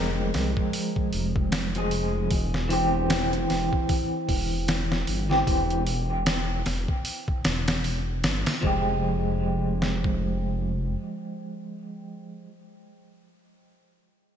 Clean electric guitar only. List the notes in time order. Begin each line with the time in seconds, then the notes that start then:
Already playing: F3 G#3 A#4
1.76 F3 G#3 G#4
2.69 E3 C4 G4
5.30 E3 C4 G4
8.61 F3 G#3
8.67 G4